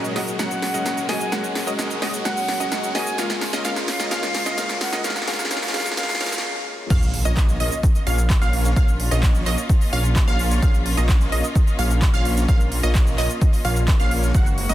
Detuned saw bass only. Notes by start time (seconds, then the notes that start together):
6.90 A#1
7.25 A#1
7.60 A#1
8.07 A#1
8.41 A#1
8.76 A#1
9.11 A#1
9.46 A#1
9.93 A#1
10.28 A#1
10.62 A#1
10.97 A#1
11.32 A#1
11.79 A#1
12.14 A#1
12.48 A#1
12.83 A#1
13.18 A#1
13.65 A#1
14.00 A#1
14.35 F#1
14.69 F#1